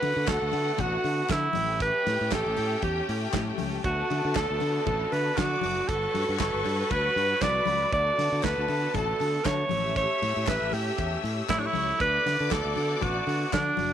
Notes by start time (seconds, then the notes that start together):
Already playing: D3 A3 B3 F#4 B4 F#5
0.02 D3, open hi-hat, muted conga
0.17 D3
0.27 D2 A4, kick, snare, clap, closed hi-hat, high conga
0.42 D2
0.52 D3, open hi-hat, muted conga
0.78 A1 F#4, kick, closed hi-hat, muted conga, low conga
1.04 D3, open hi-hat, muted conga
1.29 D3 E4, kick, snare, clap, closed hi-hat, high conga
1.31 clap
1.53 A1 A3 C#4 G4 G5, open hi-hat, high conga
1.80 B4, kick, closed hi-hat
2.06 A2, snare, open hi-hat, muted conga
2.21 A2
2.31 A1 A4, kick, snare, clap, closed hi-hat, high conga
2.33 clap
2.46 A1
2.57 A2, open hi-hat, muted conga
2.82 E2 G4, kick, closed hi-hat, muted conga
3.09 A2, open hi-hat
3.33 A2, kick, snare, clap, closed hi-hat, high conga
3.35 clap
3.58 C#2, open hi-hat, high conga
3.84 D2 D3 B3 F#4 A4 A5, kick, closed hi-hat
4.10 D3, open hi-hat, muted conga
4.25 D3
4.35 D2 A4, kick, snare, clap, closed hi-hat, high conga
4.37 clap
4.50 D2
4.60 D3, open hi-hat, muted conga
4.87 A1 A4, kick, closed hi-hat, muted conga, low conga
5.12 D3 B4, open hi-hat, muted conga
5.37 D3 F#4 D5 D6, kick, snare, clap, closed hi-hat, high conga
5.39 clap
5.61 F#1, open hi-hat, high conga
5.88 G1 G3 A4 B4 C#5 C#6, kick, closed hi-hat
6.14 G2, open hi-hat, muted conga
6.29 G2
6.39 G1 A4, kick, snare, clap, closed hi-hat, high conga
6.41 clap
6.54 G1
6.64 G2, open hi-hat, muted conga
6.91 D2 B4, kick, closed hi-hat, muted conga
7.16 G2, open hi-hat, muted conga
7.41 C2 B4 D5 B5, kick, snare, clap, closed hi-hat, high conga
7.43 clap
7.66 C#2, open hi-hat, high conga
7.92 D2 D3 A3 B3 A4 D5 A5, kick, closed hi-hat
8.18 D3, snare, open hi-hat, muted conga
8.32 D3
8.43 D2 B4, kick, snare, clap, closed hi-hat, high conga
8.45 clap
8.58 D2
8.68 D3, open hi-hat, muted conga
8.94 A1 A4, kick, closed hi-hat, muted conga, low conga
9.20 D3, open hi-hat, muted conga
9.45 D3 C#5, kick, snare, clap, closed hi-hat, high conga
9.47 clap
9.69 A1 C#4 G4 E5 E6, open hi-hat, high conga
9.96 C#5, kick, closed hi-hat
10.22 A2, open hi-hat, muted conga
10.36 A2
10.47 A1 B4, kick, snare, clap, closed hi-hat, high conga
10.49 clap
10.62 A1
10.72 A2 G4, open hi-hat, muted conga
10.98 E2, kick, closed hi-hat, muted conga
11.24 A2, open hi-hat, muted conga
11.49 A2 E4 C#5 C#6, kick, snare, clap, closed hi-hat, high conga
11.51 clap
11.59 D4
11.66 E4
11.73 C#2, open hi-hat, high conga
11.99 D2 D3 B3 F#4 B4 D5 D6, kick, closed hi-hat
12.26 D3, snare, open hi-hat, muted conga
12.40 D3
12.51 D2 A4, kick, snare, clap, closed hi-hat, high conga
12.53 clap
12.65 D2
12.76 D3, open hi-hat, muted conga
13.01 A1 F#4, kick, closed hi-hat, muted conga, low conga
13.27 D3, open hi-hat, muted conga
13.53 D3 D4, kick, snare, clap, closed hi-hat, high conga
13.55 clap
13.77 F#1, open hi-hat, high conga